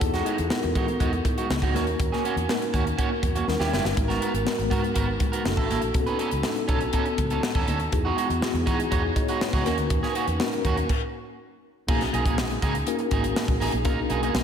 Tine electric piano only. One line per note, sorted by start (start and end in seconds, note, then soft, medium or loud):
0.00 0.38 B3 medium
0.00 0.38 D#4 medium
0.00 0.38 E4 medium
0.00 0.38 F#4 medium
0.00 0.38 G#4 medium
0.00 0.24 A4 medium
0.00 0.24 F#5 medium
0.51 1.25 B3 medium
0.51 1.25 D#4 medium
0.51 1.26 E4 medium
0.51 1.25 F#4 medium
0.51 1.26 A#4 medium
1.74 2.34 A#3 medium
1.74 2.34 C#4 medium
1.74 2.34 D#4 medium
1.74 2.34 F#4 medium
1.74 2.35 A#4 medium
2.49 3.23 A#3 medium
2.49 3.23 C#4 medium
2.49 3.23 D#4 medium
2.49 3.24 F#4 medium
2.49 3.24 A#4 medium
3.47 3.87 G3 medium
3.47 3.87 C#4 medium
3.47 3.87 D#4 medium
3.47 3.87 E4 medium
3.47 3.87 A#4 medium
3.96 4.34 G#3 medium
3.96 4.34 B3 medium
3.96 4.34 D#4 medium
3.96 4.34 F#4 medium
3.96 4.35 A#4 medium
4.45 5.20 G#3 medium
4.45 5.20 B3 medium
4.45 5.20 D#4 medium
4.45 5.21 F#4 medium
4.45 5.21 A#4 medium
5.44 5.84 A#3 medium
5.44 5.85 D4 medium
5.44 5.85 E4 medium
5.44 5.85 F#4 medium
5.44 5.85 A4 medium
5.94 6.32 B3 medium
5.94 6.32 C#4 medium
5.94 6.32 D#4 medium
5.94 6.32 F#4 medium
5.94 6.01 G#4 medium
6.01 6.35 A4 medium
6.44 7.19 B3 medium
6.44 7.19 C#4 medium
6.44 6.50 D4 medium
6.44 7.19 F#4 medium
6.44 7.19 A4 medium
6.51 7.22 D#4 medium
7.92 8.30 B3 medium
7.92 8.30 D#4 medium
7.92 8.30 E4 medium
7.92 8.30 F#4 medium
7.92 8.30 G#4 medium
8.41 9.16 B3 medium
8.41 8.91 D#4 medium
8.41 8.91 E4 medium
8.41 8.91 F#4 medium
8.41 8.91 G#4 medium
8.92 9.15 E4 soft
8.92 9.15 C#5 medium
9.16 9.40 F#4 medium
9.16 9.40 D#5 medium
9.41 9.64 D#4 medium
9.41 9.88 B4 medium
9.65 10.24 A#3 medium
9.65 10.25 C#4 medium
9.65 10.25 D#4 medium
9.65 10.25 F#4 medium
9.65 10.25 A#4 medium
10.39 10.89 A#3 medium
10.39 10.89 C#4 medium
10.39 10.89 D#4 medium
10.39 10.89 F#4 medium
10.39 10.89 A#4 medium
11.87 12.62 A#3 medium
11.87 12.62 C#4 medium
11.87 12.62 D#4 medium
11.87 12.63 F#4 medium
11.87 12.63 G#4 medium
12.87 13.05 A#3 medium
12.87 13.05 C#4 medium
12.87 13.05 D#4 medium
12.87 13.06 F#4 medium
12.87 13.06 A#4 medium
13.11 13.67 A#3 medium
13.11 13.67 C#4 medium
13.11 13.67 D#4 medium
13.11 13.67 F#4 medium
13.11 13.67 G#4 medium
13.84 14.44 A#3 medium
13.84 14.44 C#4 medium
13.84 13.91 D4 medium
13.84 14.44 F#4 medium
13.84 14.44 A#4 medium
13.91 14.44 D#4 medium